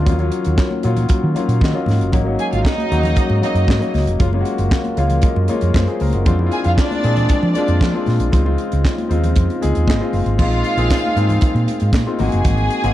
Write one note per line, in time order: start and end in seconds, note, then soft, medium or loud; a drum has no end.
0.05 0.29 D#2 loud
0.05 2.11 D#3 medium
0.05 0.14 F#3 medium
0.05 4.16 F#3 medium
0.05 0.14 A#3 medium
0.05 2.11 A#3 medium
0.05 0.14 C#4 medium
0.05 4.16 C#4 medium
0.05 0.15 F4 medium
0.05 kick loud
0.05 closed hi-hat medium
0.05 muted conga soft
0.05 low conga medium
0.18 0.58 F#3 medium
0.18 0.59 A#3 medium
0.18 0.59 C#4 medium
0.18 0.59 F4 medium
0.18 closed hi-hat soft
0.18 muted conga soft
0.32 closed hi-hat medium
0.44 0.57 D#2 medium
0.44 closed hi-hat soft
0.58 kick loud
0.58 snare loud
0.58 clap medium
0.58 muted conga soft
0.71 muted conga soft
0.71 high conga medium
0.83 1.06 A#2 medium
0.83 1.16 F#3 medium
0.83 1.16 A#3 medium
0.83 1.16 C#4 medium
0.83 1.16 F4 medium
0.83 closed hi-hat medium
0.97 closed hi-hat medium
0.97 low conga medium
1.09 muted fingered electric bass stroke soft
1.09 kick loud
1.09 closed hi-hat medium
1.24 1.34 D#3 medium
1.35 1.59 F#3 medium
1.35 1.60 A#3 medium
1.35 1.60 C#4 medium
1.35 1.60 F4 medium
1.35 1.60 F5 medium
1.35 closed hi-hat medium
1.35 high conga soft
1.48 1.59 A#2 medium
1.48 closed hi-hat soft
1.61 1.73 D#3 medium
1.61 2.10 D#5 medium
1.61 kick medium
1.61 snare medium
1.61 clap medium
1.61 high conga medium
1.74 1.98 F#3 medium
1.74 1.98 A#3 medium
1.74 1.98 C#4 medium
1.74 1.98 F4 medium
1.74 muted conga soft
1.86 1.98 G#2 medium
1.86 snare soft
1.86 open hi-hat soft
1.86 high conga medium
1.86 low conga medium
2.01 2.14 F#1 medium
2.01 closed hi-hat medium
2.12 2.35 G#1 medium
2.12 2.21 F#3 medium
2.12 4.17 G#3 medium
2.12 2.21 A#3 medium
2.12 2.21 C#4 medium
2.12 2.21 D#4 medium
2.12 kick loud
2.12 closed hi-hat medium
2.12 muted conga soft
2.12 low conga medium
2.25 2.65 F#3 medium
2.25 2.65 A#3 medium
2.25 2.65 C#4 medium
2.25 2.66 D#4 medium
2.39 2.49 G#4 medium
2.39 2.49 G#5 medium
2.39 closed hi-hat medium
2.52 2.63 G#1 medium
2.52 2.62 F4 medium
2.52 2.63 F5 medium
2.52 closed hi-hat soft
2.65 3.38 D#4 loud
2.65 3.39 D#5 loud
2.65 kick loud
2.65 snare loud
2.65 clap medium
2.65 muted conga soft
2.78 closed hi-hat soft
2.78 muted conga soft
2.78 high conga medium
2.91 3.13 D#2 medium
2.91 3.22 F#3 medium
2.91 3.23 A#3 medium
2.91 3.23 C#4 medium
2.91 3.23 F#4 medium
2.91 closed hi-hat medium
3.03 closed hi-hat medium
3.03 low conga medium
3.16 kick loud
3.16 closed hi-hat medium
3.30 3.41 G#2 medium
3.30 muted conga soft
3.42 3.66 F#3 medium
3.42 3.66 A#3 medium
3.42 3.66 C#4 medium
3.42 3.91 D#4 medium
3.42 3.67 D#4 medium
3.42 3.91 D#5 medium
3.42 closed hi-hat medium
3.42 high conga soft
3.55 3.66 F#2 medium
3.55 closed hi-hat soft
3.68 3.80 G#2 medium
3.68 kick loud
3.68 snare loud
3.68 clap medium
3.68 high conga medium
3.79 4.04 F#3 medium
3.79 4.05 A#3 medium
3.79 4.05 C#4 medium
3.79 4.05 D#4 medium
3.79 closed hi-hat soft
3.94 4.05 C#2 medium
3.94 snare soft
3.94 open hi-hat medium
3.94 high conga medium
4.07 4.18 F1 loud
4.07 closed hi-hat medium
4.19 4.42 F#1 loud
4.19 6.24 F#3 medium
4.19 4.27 G#3 medium
4.19 4.28 A#3 medium
4.19 6.25 C#4 medium
4.19 4.28 C#4 medium
4.19 4.28 F4 loud
4.19 6.25 A#4 medium
4.19 6.25 F5 medium
4.19 kick loud
4.19 closed hi-hat medium
4.19 low conga medium
4.33 4.73 G#3 medium
4.33 4.73 A#3 medium
4.33 4.73 C#4 medium
4.33 4.40 F4 medium
4.33 muted conga soft
4.41 4.76 F#4 medium
4.45 closed hi-hat medium
4.58 4.70 F#1 medium
4.58 closed hi-hat soft
4.71 kick loud
4.71 snare loud
4.71 clap loud
4.71 muted conga soft
4.85 closed hi-hat soft
4.85 muted conga soft
4.85 high conga medium
4.97 5.19 C#2 medium
4.97 5.29 G#3 medium
4.97 5.29 A#3 medium
4.97 5.29 C#4 medium
4.97 5.30 F4 medium
4.97 5.22 F5 medium
4.97 closed hi-hat medium
5.10 closed hi-hat soft
5.10 low conga medium
5.22 5.47 D#5 medium
5.22 muted fingered electric bass stroke soft
5.22 kick loud
5.22 closed hi-hat medium
5.22 muted conga soft
5.36 5.47 F#2 medium
5.36 muted conga soft
5.48 5.72 G#3 medium
5.48 5.73 A#3 medium
5.48 5.73 C#4 medium
5.48 5.73 F4 medium
5.48 5.73 C#5 medium
5.48 closed hi-hat medium
5.48 high conga medium
5.61 5.73 F2 medium
5.61 closed hi-hat soft
5.74 5.86 F#2 loud
5.74 5.88 C#4 medium
5.74 5.87 F4 medium
5.74 5.99 C5 medium
5.74 kick loud
5.74 snare medium
5.74 clap medium
5.74 muted conga soft
5.74 high conga medium
5.87 6.12 F4 medium
5.87 6.12 G#4 medium
5.87 closed hi-hat soft
6.00 6.12 C#2 loud
6.00 6.25 A#4 medium
6.00 open hi-hat medium
6.00 high conga medium
6.13 6.25 F#1 medium
6.13 6.38 D#4 soft
6.13 6.38 F#4 medium
6.13 closed hi-hat medium
6.25 6.48 F2 loud
6.25 6.34 G#3 medium
6.25 8.31 G#3 medium
6.25 8.32 A#3 medium
6.25 6.34 C4 medium
6.25 6.34 D4 medium
6.25 8.32 D4 medium
6.25 6.35 F4 loud
6.25 kick loud
6.25 closed hi-hat medium
6.25 muted conga soft
6.25 low conga medium
6.39 6.79 G#3 medium
6.39 6.79 C4 medium
6.39 6.79 D4 medium
6.39 6.46 E4 medium
6.39 muted conga soft
6.46 6.83 F4 medium
6.52 6.62 G#4 medium
6.52 6.63 G#5 medium
6.52 closed hi-hat medium
6.64 6.76 F2 loud
6.64 6.76 F4 medium
6.64 6.76 F5 medium
6.64 closed hi-hat medium
6.78 7.51 D4 loud
6.78 7.51 D5 loud
6.78 kick loud
6.78 snare loud
6.78 clap medium
6.78 muted conga soft
6.91 closed hi-hat soft
6.91 high conga medium
7.04 7.26 A#2 loud
7.04 7.35 G#3 medium
7.04 7.35 C4 medium
7.04 7.36 D4 medium
7.04 7.36 G#4 medium
7.04 closed hi-hat medium
7.17 closed hi-hat medium
7.17 low conga medium
7.29 kick loud
7.29 closed hi-hat medium
7.29 muted conga soft
7.43 7.54 F3 medium
7.43 muted conga soft
7.54 7.79 G#3 medium
7.54 7.80 C4 medium
7.54 8.03 D4 medium
7.54 7.80 D4 medium
7.54 7.80 F4 medium
7.54 8.04 D5 medium
7.54 closed hi-hat medium
7.54 high conga soft
7.68 7.79 F2 medium
7.68 closed hi-hat soft
7.81 7.92 F3 medium
7.81 kick loud
7.81 snare loud
7.81 clap medium
7.81 muted conga soft
7.81 high conga medium
7.94 8.18 G#3 medium
7.94 8.18 C4 medium
7.94 8.18 D4 medium
7.94 8.18 F4 medium
7.94 muted conga soft
8.06 8.18 A#2 medium
8.06 snare soft
8.06 open hi-hat medium
8.06 high conga medium
8.20 8.31 A#1 medium
8.20 closed hi-hat medium
8.32 8.55 C#2 loud
8.32 10.23 C#3 medium
8.32 8.40 G#3 medium
8.32 8.40 C4 medium
8.32 10.23 C4 medium
8.32 10.23 D#4 medium
8.32 8.41 D#4 medium
8.32 10.23 F4 medium
8.32 8.41 F4 medium
8.32 kick loud
8.32 closed hi-hat medium
8.32 low conga medium
8.45 8.85 G#3 medium
8.45 8.85 C4 medium
8.45 8.85 D#4 medium
8.45 8.86 F4 medium
8.45 muted conga soft
8.58 closed hi-hat medium
8.72 8.83 C#2 medium
8.72 closed hi-hat medium
8.85 kick loud
8.85 snare loud
8.85 clap medium
8.85 muted conga soft
8.98 closed hi-hat soft
8.98 muted conga soft
8.98 high conga medium
9.09 9.32 D#2 medium
9.09 9.41 G#3 medium
9.09 9.41 C4 medium
9.09 9.42 D#4 medium
9.09 9.42 F4 medium
9.09 closed hi-hat medium
9.24 closed hi-hat medium
9.24 low conga medium
9.36 9.47 F2 medium
9.36 kick loud
9.36 closed hi-hat medium
9.50 closed hi-hat soft
9.50 muted conga soft
9.61 9.74 C#2 loud
9.61 9.85 G#3 medium
9.61 9.86 C4 medium
9.61 9.86 D#4 medium
9.61 9.86 G#4 loud
9.61 closed hi-hat medium
9.61 high conga soft
9.75 9.87 D#2 medium
9.75 closed hi-hat soft
9.88 9.99 G#1 medium
9.88 10.12 D#5 medium
9.88 kick loud
9.88 snare loud
9.88 clap medium
9.88 high conga medium
10.00 10.24 G#3 medium
10.00 10.24 C4 medium
10.00 10.25 D#4 medium
10.00 10.25 F4 medium
10.13 10.24 F#1 medium
10.13 10.38 F5 medium
10.13 open hi-hat medium
10.13 high conga medium
10.26 10.37 G#1 medium
10.26 closed hi-hat soft
10.38 10.61 A#1 loud
10.38 10.62 G#3 medium
10.38 12.17 G#3 medium
10.38 12.19 A#3 medium
10.38 10.63 C4 medium
10.38 10.63 D#4 medium
10.38 12.18 D#4 medium
10.38 11.91 F4 loud
10.38 10.63 F4 medium
10.38 11.91 F5 loud
10.38 kick loud
10.38 crash medium
10.38 muted conga soft
10.38 low conga medium
10.51 closed hi-hat soft
10.51 muted conga soft
10.64 closed hi-hat medium
10.77 10.89 A#1 medium
10.77 11.01 G#3 medium
10.77 11.02 C4 medium
10.77 11.02 D#4 medium
10.77 11.02 G#4 medium
10.77 closed hi-hat soft
10.90 kick loud
10.90 snare loud
10.90 clap medium
10.90 tambourine medium
10.90 muted conga soft
11.04 high conga medium
11.16 11.38 G#2 medium
11.16 11.72 G#3 medium
11.16 11.72 C4 medium
11.16 11.72 D#4 medium
11.16 11.73 G#4 medium
11.16 closed hi-hat medium
11.29 closed hi-hat medium
11.29 low conga medium
11.41 muted fingered electric bass stroke soft
11.41 kick loud
11.41 closed hi-hat medium
11.55 11.66 A#2 medium
11.55 closed hi-hat soft
11.55 muted conga soft
11.68 closed hi-hat medium
11.68 high conga medium
11.80 11.93 G#2 medium
11.80 closed hi-hat soft
11.93 12.05 A#2 medium
11.93 kick loud
11.93 snare loud
11.93 clap medium
11.93 tambourine medium
11.93 muted conga soft
11.93 high conga medium
12.06 12.15 G#3 medium
12.06 12.15 C4 medium
12.06 12.15 D#4 medium
12.06 12.15 F4 medium
12.18 12.31 G#1 loud
12.18 12.94 G#3 medium
12.18 12.71 A#3 medium
12.18 12.94 C4 medium
12.18 12.71 C4 medium
12.18 12.72 D#4 medium
12.18 12.94 F#4 medium
12.18 12.72 F#4 medium
12.18 12.94 G#4 loud
12.18 12.94 G#5 loud
12.18 open hi-hat medium
12.18 high conga medium
12.18 low conga medium
12.32 12.44 F#1 medium
12.32 closed hi-hat medium
12.45 12.67 G#1 loud
12.45 kick loud
12.45 closed hi-hat medium
12.45 low conga medium
12.57 closed hi-hat soft
12.57 muted conga soft
12.70 closed hi-hat medium
12.84 12.94 G#1 loud
12.84 12.94 A#3 medium
12.84 12.94 C4 medium
12.84 12.94 D#4 medium
12.84 12.94 F#4 medium
12.84 closed hi-hat medium